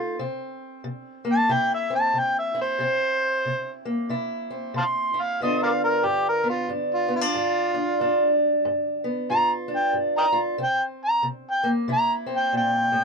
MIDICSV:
0, 0, Header, 1, 3, 480
1, 0, Start_track
1, 0, Tempo, 649351
1, 149, Time_signature, 4, 2, 24, 8
1, 9639, End_track
2, 0, Start_track
2, 0, Title_t, "Harmonica"
2, 0, Program_c, 0, 22
2, 978, Note_on_c, 0, 81, 106
2, 1125, Note_on_c, 0, 79, 90
2, 1137, Note_off_c, 0, 81, 0
2, 1272, Note_off_c, 0, 79, 0
2, 1287, Note_on_c, 0, 76, 86
2, 1433, Note_off_c, 0, 76, 0
2, 1443, Note_on_c, 0, 81, 86
2, 1615, Note_on_c, 0, 79, 82
2, 1626, Note_off_c, 0, 81, 0
2, 1757, Note_off_c, 0, 79, 0
2, 1766, Note_on_c, 0, 76, 80
2, 1913, Note_off_c, 0, 76, 0
2, 1932, Note_on_c, 0, 72, 115
2, 2852, Note_off_c, 0, 72, 0
2, 3529, Note_on_c, 0, 77, 65
2, 3529, Note_on_c, 0, 81, 65
2, 3529, Note_on_c, 0, 84, 93
2, 3575, Note_off_c, 0, 77, 0
2, 3576, Note_off_c, 0, 81, 0
2, 3855, Note_on_c, 0, 77, 83
2, 3866, Note_off_c, 0, 84, 0
2, 3997, Note_off_c, 0, 77, 0
2, 4013, Note_on_c, 0, 75, 82
2, 4156, Note_off_c, 0, 75, 0
2, 4162, Note_on_c, 0, 70, 52
2, 4162, Note_on_c, 0, 74, 52
2, 4162, Note_on_c, 0, 77, 75
2, 4214, Note_off_c, 0, 70, 0
2, 4217, Note_off_c, 0, 74, 0
2, 4310, Note_off_c, 0, 77, 0
2, 4318, Note_on_c, 0, 70, 84
2, 4473, Note_on_c, 0, 67, 85
2, 4484, Note_off_c, 0, 70, 0
2, 4625, Note_off_c, 0, 67, 0
2, 4647, Note_on_c, 0, 70, 83
2, 4793, Note_off_c, 0, 70, 0
2, 4800, Note_on_c, 0, 65, 77
2, 4949, Note_off_c, 0, 65, 0
2, 5131, Note_on_c, 0, 65, 83
2, 5274, Note_off_c, 0, 65, 0
2, 5289, Note_on_c, 0, 65, 104
2, 6209, Note_off_c, 0, 65, 0
2, 6880, Note_on_c, 0, 82, 104
2, 7028, Note_off_c, 0, 82, 0
2, 7210, Note_on_c, 0, 79, 82
2, 7353, Note_off_c, 0, 79, 0
2, 7524, Note_on_c, 0, 75, 71
2, 7524, Note_on_c, 0, 79, 71
2, 7524, Note_on_c, 0, 82, 101
2, 7575, Note_off_c, 0, 79, 0
2, 7588, Note_off_c, 0, 75, 0
2, 7671, Note_off_c, 0, 82, 0
2, 7860, Note_on_c, 0, 79, 87
2, 7999, Note_off_c, 0, 79, 0
2, 8168, Note_on_c, 0, 82, 95
2, 8312, Note_off_c, 0, 82, 0
2, 8507, Note_on_c, 0, 79, 78
2, 8642, Note_off_c, 0, 79, 0
2, 8820, Note_on_c, 0, 82, 104
2, 8959, Note_off_c, 0, 82, 0
2, 9140, Note_on_c, 0, 79, 91
2, 9278, Note_off_c, 0, 79, 0
2, 9294, Note_on_c, 0, 79, 108
2, 9639, Note_off_c, 0, 79, 0
2, 9639, End_track
3, 0, Start_track
3, 0, Title_t, "Steel-string acoustic guitar"
3, 0, Program_c, 1, 25
3, 0, Note_on_c, 1, 41, 69
3, 0, Note_on_c, 1, 57, 60
3, 0, Note_on_c, 1, 63, 56
3, 0, Note_on_c, 1, 65, 64
3, 107, Note_off_c, 1, 41, 0
3, 123, Note_off_c, 1, 65, 0
3, 126, Note_off_c, 1, 63, 0
3, 130, Note_off_c, 1, 57, 0
3, 143, Note_on_c, 1, 48, 74
3, 144, Note_on_c, 1, 60, 59
3, 588, Note_off_c, 1, 48, 0
3, 621, Note_on_c, 1, 48, 77
3, 921, Note_on_c, 1, 58, 59
3, 1067, Note_off_c, 1, 48, 0
3, 1103, Note_on_c, 1, 48, 71
3, 1105, Note_on_c, 1, 64, 70
3, 1397, Note_off_c, 1, 60, 0
3, 1406, Note_on_c, 1, 60, 61
3, 1548, Note_off_c, 1, 48, 0
3, 1578, Note_on_c, 1, 48, 66
3, 1873, Note_off_c, 1, 64, 0
3, 1882, Note_on_c, 1, 64, 68
3, 2026, Note_off_c, 1, 48, 0
3, 2047, Note_off_c, 1, 58, 0
3, 2049, Note_off_c, 1, 60, 0
3, 2061, Note_on_c, 1, 48, 75
3, 2072, Note_on_c, 1, 60, 62
3, 2507, Note_off_c, 1, 48, 0
3, 2554, Note_on_c, 1, 48, 67
3, 2849, Note_on_c, 1, 58, 57
3, 2993, Note_off_c, 1, 48, 0
3, 3024, Note_off_c, 1, 64, 0
3, 3026, Note_on_c, 1, 48, 71
3, 3032, Note_on_c, 1, 64, 69
3, 3320, Note_off_c, 1, 60, 0
3, 3330, Note_on_c, 1, 60, 55
3, 3469, Note_off_c, 1, 48, 0
3, 3505, Note_on_c, 1, 48, 73
3, 3790, Note_off_c, 1, 64, 0
3, 3799, Note_on_c, 1, 64, 65
3, 3948, Note_off_c, 1, 48, 0
3, 3970, Note_off_c, 1, 58, 0
3, 3970, Note_off_c, 1, 60, 0
3, 3988, Note_off_c, 1, 64, 0
3, 3996, Note_on_c, 1, 43, 75
3, 4002, Note_on_c, 1, 50, 62
3, 4007, Note_on_c, 1, 59, 60
3, 4012, Note_on_c, 1, 62, 56
3, 4017, Note_on_c, 1, 65, 65
3, 4434, Note_off_c, 1, 43, 0
3, 4463, Note_on_c, 1, 43, 73
3, 4755, Note_off_c, 1, 59, 0
3, 4758, Note_on_c, 1, 59, 56
3, 4907, Note_off_c, 1, 43, 0
3, 4941, Note_on_c, 1, 43, 67
3, 4944, Note_off_c, 1, 62, 0
3, 4947, Note_on_c, 1, 62, 57
3, 5227, Note_off_c, 1, 59, 0
3, 5233, Note_off_c, 1, 62, 0
3, 5236, Note_on_c, 1, 59, 58
3, 5332, Note_off_c, 1, 59, 0
3, 5332, Note_on_c, 1, 62, 52
3, 5386, Note_off_c, 1, 43, 0
3, 5430, Note_on_c, 1, 43, 71
3, 5715, Note_off_c, 1, 62, 0
3, 5724, Note_on_c, 1, 62, 62
3, 5870, Note_off_c, 1, 43, 0
3, 5887, Note_off_c, 1, 62, 0
3, 5898, Note_off_c, 1, 65, 0
3, 5912, Note_on_c, 1, 43, 72
3, 5921, Note_on_c, 1, 62, 64
3, 6351, Note_off_c, 1, 43, 0
3, 6395, Note_on_c, 1, 43, 70
3, 6684, Note_on_c, 1, 59, 56
3, 6833, Note_off_c, 1, 43, 0
3, 6871, Note_on_c, 1, 43, 79
3, 6876, Note_on_c, 1, 65, 65
3, 7147, Note_off_c, 1, 62, 0
3, 7156, Note_on_c, 1, 62, 58
3, 7311, Note_off_c, 1, 43, 0
3, 7342, Note_on_c, 1, 43, 71
3, 7623, Note_off_c, 1, 65, 0
3, 7632, Note_on_c, 1, 65, 70
3, 7786, Note_off_c, 1, 43, 0
3, 7801, Note_off_c, 1, 65, 0
3, 7802, Note_off_c, 1, 62, 0
3, 7807, Note_off_c, 1, 59, 0
3, 7821, Note_on_c, 1, 48, 69
3, 7823, Note_on_c, 1, 60, 61
3, 7833, Note_off_c, 1, 50, 0
3, 8266, Note_off_c, 1, 48, 0
3, 8300, Note_on_c, 1, 48, 74
3, 8601, Note_on_c, 1, 58, 58
3, 8745, Note_off_c, 1, 48, 0
3, 8781, Note_on_c, 1, 48, 79
3, 8789, Note_on_c, 1, 64, 64
3, 9057, Note_off_c, 1, 60, 0
3, 9066, Note_on_c, 1, 60, 61
3, 9225, Note_off_c, 1, 48, 0
3, 9259, Note_on_c, 1, 46, 65
3, 9548, Note_off_c, 1, 46, 0
3, 9551, Note_on_c, 1, 45, 67
3, 9639, Note_off_c, 1, 45, 0
3, 9639, Note_off_c, 1, 58, 0
3, 9639, Note_off_c, 1, 60, 0
3, 9639, Note_off_c, 1, 64, 0
3, 9639, End_track
0, 0, End_of_file